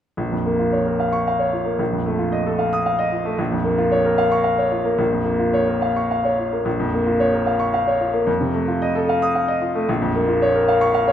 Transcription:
0.17 1.76 A#1 medium
0.32 0.54 F2 soft
0.46 0.67 A#3 soft
0.59 0.81 F4 soft
0.73 0.94 C#5 soft
0.86 1.08 A#4 medium
1.00 1.21 F5 medium
1.13 1.34 C#6 medium
1.27 1.48 F5 medium
1.39 1.61 C#5 medium
1.53 1.74 F4 soft
1.65 1.79 A#3 soft
1.79 3.34 A#1 medium
1.93 2.14 F2 soft
2.06 2.27 A3 medium
2.19 2.40 F4 medium
2.32 2.54 D#5 medium
2.46 2.68 A4 medium
2.59 2.80 F5 medium
2.73 2.94 D#6 medium
2.86 3.07 F5 medium
2.99 3.20 D#5 medium
3.12 3.34 F4 soft
3.25 3.39 A3 medium
3.38 4.94 A#1 medium
3.52 3.73 F2 medium
3.65 3.86 A#3 medium
3.78 4.00 F4 medium
3.92 4.13 C#5 medium
4.05 4.26 A#4 medium
4.18 4.39 F5 medium
4.32 4.53 C#6 medium
4.44 4.66 F5 medium
4.58 4.80 C#5 medium
4.72 4.93 F4 medium
4.85 5.07 A#3 medium
4.98 6.62 A#1 medium
5.12 5.34 F2 soft
5.25 5.48 A#3 medium
5.39 5.62 F4 medium
5.54 5.76 C#5 medium
5.68 5.90 A#4 medium
5.82 6.04 F5 medium
5.96 6.19 C#6 medium
6.11 6.33 F5 medium
6.25 6.47 C#5 medium
6.39 6.61 F4 soft
6.53 6.66 A#3 soft
6.65 8.23 A#1 medium
6.79 7.01 F2 medium
6.94 7.15 A#3 medium
7.07 7.28 F4 medium
7.20 7.42 C#5 medium
7.33 7.55 A#4 medium
7.47 7.68 F5 medium
7.59 7.81 C#6 medium
7.74 7.95 F5 medium
7.87 8.09 C#5 medium
8.01 8.22 F4 soft
8.14 8.27 A#3 medium
8.27 9.84 F2 medium
8.41 8.62 C3 medium
8.54 8.76 A3 medium
8.68 8.90 F4 medium
8.82 9.03 D#5 medium
8.95 9.17 A4 medium
9.09 9.30 F5 medium
9.22 9.43 D#6 medium
9.35 9.57 F5 medium
9.48 9.70 D#5 medium
9.61 9.83 F4 medium
9.75 9.89 A3 medium
9.89 11.12 A#1 medium
10.02 10.23 F2 medium
10.15 10.36 A#3 medium
10.28 10.50 F4 medium
10.42 10.63 C#5 medium
10.55 10.76 A#4 medium
10.68 10.90 F5 medium
10.81 11.03 C#6 medium
10.94 11.12 F5 medium
11.08 11.12 C#5 medium

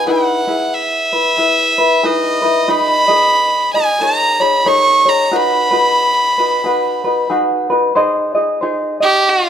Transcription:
0.06 0.46 D#4 medium
0.06 0.46 E4 medium
0.06 0.46 G#4 medium
0.06 0.46 B4 medium
0.11 0.76 F#5 medium
0.47 1.12 E4 medium
0.47 1.37 G#4 soft
0.47 1.13 B4 medium
0.74 2.07 E5 medium
1.13 1.37 E4 soft
1.13 1.38 B4 soft
1.37 1.78 E4 medium
1.37 1.77 G#4 medium
1.37 1.77 B4 medium
1.78 2.02 E4 medium
1.78 2.03 B4 medium
2.03 2.43 D#4 medium
2.03 2.42 E4 medium
2.03 2.43 G#4 medium
2.03 2.41 B4 medium
2.03 2.73 D#5 medium
2.42 2.67 D#4 soft
2.42 2.68 E4 medium
2.42 2.67 B4 medium
2.68 3.08 D#4 medium
2.68 3.08 G#4 medium
2.68 3.08 B4 medium
2.68 3.07 D#5 medium
2.68 3.74 B5 loud
3.08 3.76 D#4 medium
3.08 3.76 G#4 medium
3.08 3.75 B4 medium
3.08 3.74 D#5 medium
3.74 4.00 D#4 soft
3.74 4.00 G#4 soft
3.74 4.00 D#5 soft
3.74 4.03 G#5 medium
4.00 4.40 D#4 medium
4.00 4.40 G#4 medium
4.00 4.40 A#4 medium
4.00 4.39 C#5 medium
4.00 4.42 A#5 loud
4.40 4.65 D#4 soft
4.40 4.65 G#4 soft
4.40 4.65 C#5 medium
4.40 4.69 B5 medium
4.65 5.06 D#4 medium
4.65 5.05 G#4 medium
4.65 5.05 A#4 medium
4.65 5.04 C#5 medium
4.65 5.10 C#6 loud
5.05 5.30 D#4 soft
5.05 5.30 G#4 soft
5.05 5.32 C#5 medium
5.05 5.38 A#5 medium
5.31 5.71 D#4 medium
5.31 5.71 F#4 medium
5.31 5.72 G#4 medium
5.31 5.70 B4 medium
5.36 7.31 B5 loud
5.71 6.39 D#4 medium
5.71 6.38 F#4 medium
5.71 6.42 G#4 soft
5.71 6.37 B4 medium
6.38 6.63 D#4 soft
6.38 6.64 F#4 medium
6.38 6.64 B4 medium
6.64 7.04 D#4 medium
6.64 7.04 F#4 medium
6.64 7.04 G#4 medium
6.64 7.03 B4 medium
7.04 7.29 D#4 medium
7.04 7.30 F#4 soft
7.04 7.30 B4 medium
7.30 7.70 D#4 medium
7.30 7.69 F#4 medium
7.30 7.69 G#4 medium
7.30 7.69 B4 medium
7.70 7.95 D#4 medium
7.70 7.96 F#4 medium
7.70 7.95 B4 medium
7.95 8.35 D#4 medium
7.95 8.34 G#4 medium
7.95 8.35 C5 medium
7.95 8.33 D#5 loud
8.35 8.61 D#4 soft
8.35 8.61 G#4 medium
8.35 8.61 D#5 medium
8.61 9.02 D#4 medium
8.61 9.02 G#4 medium
8.61 9.01 C5 medium
8.61 8.99 D#5 medium
9.00 9.49 D#4 soft
9.00 9.30 G4 loud
9.00 9.49 D#5 medium
9.29 9.49 F4 loud

